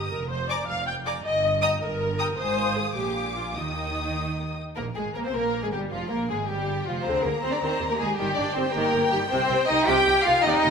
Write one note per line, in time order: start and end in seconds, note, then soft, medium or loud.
0.00 0.11 G4 medium
0.00 0.12 D#5 soft
0.00 0.11 A#5 medium
0.00 0.11 D#6 soft
0.12 0.59 F1 medium
0.12 0.59 F2 medium
0.12 0.30 A#4 medium
0.30 0.49 C5 medium
0.49 0.68 D5 medium
0.49 0.59 G#5 medium
0.49 0.59 A#5 medium
0.49 0.58 D6 medium
0.67 1.15 F1 medium
0.67 1.15 F2 medium
0.67 0.86 F5 medium
0.87 0.94 G5 medium
1.05 1.13 D5 medium
1.05 1.15 G#5 medium
1.05 1.15 A#5 medium
1.05 1.15 D6 soft
1.24 1.72 G1 medium
1.24 1.72 G2 medium
1.24 1.61 D#5 medium
1.62 1.70 D#5 medium
1.62 1.71 G5 medium
1.62 1.71 A#5 medium
1.62 1.71 D#6 medium
1.81 2.29 G1 medium
1.81 2.29 G2 medium
1.81 2.37 A#4 medium
2.19 2.28 G5 medium
2.19 2.28 A#5 medium
2.19 2.28 D#6 medium
2.38 2.92 G#1 medium
2.38 2.92 G#2 medium
2.38 2.76 C5 medium
2.38 2.93 F5 medium
2.38 2.93 G#5 medium
2.38 2.92 D#6 medium
2.77 2.96 G#4 medium
2.96 3.55 A#1 medium
2.96 3.55 A#2 medium
2.96 3.35 G4 medium
2.96 3.55 F5 medium
2.96 3.55 G#5 medium
2.96 3.56 D6 medium
3.36 3.56 F4 medium
3.56 4.57 D#2 medium
3.56 4.57 D#3 medium
3.56 4.57 D#4 medium
3.56 4.57 D#5 medium
3.56 4.57 G5 medium
3.56 4.57 D#6 soft
4.76 4.95 A#1 medium
4.76 4.85 A#3 medium
4.76 4.84 A#4 medium
4.76 4.85 A#4 medium
4.95 5.16 G#1 medium
4.95 5.04 G#3 medium
4.95 5.16 G#3 medium
4.95 5.03 G#4 medium
4.95 5.15 G#4 medium
5.15 5.20 A#1 medium
5.15 5.25 A#3 medium
5.15 5.26 A#3 medium
5.15 5.19 A#4 medium
5.24 5.35 C2 medium
5.24 5.35 C4 medium
5.24 5.35 C5 medium
5.34 5.64 A#1 medium
5.34 5.63 A#3 medium
5.34 5.63 A#4 medium
5.34 5.64 A#4 medium
5.63 5.73 G#1 medium
5.63 5.73 G#3 medium
5.63 5.74 G#3 medium
5.63 5.67 G#4 medium
5.63 5.74 G#4 medium
5.73 5.92 G1 medium
5.73 5.92 G3 medium
5.73 5.81 G4 medium
5.91 6.00 F1 medium
5.91 6.11 F3 medium
5.91 6.10 F4 medium
5.91 6.11 F4 medium
6.10 6.30 A#1 medium
6.10 6.30 A#3 medium
6.10 6.18 A#4 medium
6.10 6.29 A#4 medium
6.29 6.49 G#1 medium
6.29 6.49 G#3 medium
6.29 6.38 G#3 medium
6.29 6.48 G#4 medium
6.29 6.37 G#4 medium
6.48 6.87 G1 medium
6.48 6.86 G3 medium
6.48 6.86 G4 medium
6.48 6.85 G4 medium
6.86 7.05 F1 medium
6.86 7.05 F3 medium
6.86 7.06 F3 medium
6.86 7.05 F4 medium
7.05 7.13 D2 medium
7.05 7.24 D3 medium
7.05 7.24 C4 medium
7.05 7.58 G#4 medium
7.05 7.24 C5 loud
7.05 8.14 A#5 medium
7.24 7.32 D2 soft
7.24 7.32 D3 medium
7.24 7.43 A#3 medium
7.24 7.43 A#4 medium
7.43 7.50 D2 medium
7.43 7.51 F3 soft
7.43 7.52 C4 medium
7.43 7.52 C5 medium
7.52 7.62 D4 medium
7.52 7.62 D5 medium
7.61 7.69 D#2 medium
7.61 7.79 D#3 medium
7.61 7.89 C4 medium
7.61 9.30 G4 medium
7.61 7.89 C5 medium
7.80 7.88 D#2 medium
7.80 7.89 D#3 soft
7.90 7.94 A#3 medium
7.90 7.94 A#4 medium
7.99 8.07 D#2 medium
7.99 8.07 D#3 medium
7.99 8.18 G#3 medium
7.99 8.17 G#4 loud
8.18 8.26 G1 medium
8.18 8.36 D#3 medium
8.18 8.37 G3 medium
8.18 8.36 G4 loud
8.18 10.43 G5 medium
8.37 8.45 G1 medium
8.37 8.45 D#3 medium
8.37 8.55 D4 medium
8.37 8.56 D5 medium
8.55 8.63 G1 medium
8.55 8.64 D#3 medium
8.55 8.63 C4 medium
8.55 8.74 C5 medium
8.74 8.82 G1 medium
8.74 8.93 D#3 medium
8.74 9.11 A#3 medium
8.74 9.12 A#4 loud
8.93 9.01 G1 medium
8.93 9.02 D#3 medium
9.11 9.19 G1 medium
9.11 9.20 D#3 medium
9.11 9.30 G3 medium
9.11 9.19 G4 loud
9.30 9.38 C2 loud
9.30 9.48 C3 medium
9.30 9.68 C4 loud
9.30 10.70 G4 medium
9.30 9.67 C5 loud
9.49 9.57 C2 medium
9.49 9.58 C3 medium
9.68 9.76 C2 medium
9.68 9.76 D#3 medium
9.68 9.87 D#4 loud
9.68 9.87 D#5 loud
9.87 9.95 C2 medium
9.87 10.05 C3 loud
9.87 10.26 G4 loud
9.87 10.25 G5 loud
10.07 10.14 C2 medium
10.07 10.14 C3 medium
10.25 10.33 C2 medium
10.25 10.34 D#3 medium
10.25 10.45 F4 loud
10.25 10.44 F5 loud
10.44 10.53 D#2 loud
10.44 10.63 C3 medium
10.44 10.70 D#4 loud
10.44 10.51 D#5 loud
10.44 10.70 G5 medium
10.50 10.58 D5 loud
10.58 10.70 D#5 loud
10.64 10.70 D#2 medium
10.64 10.70 C3 medium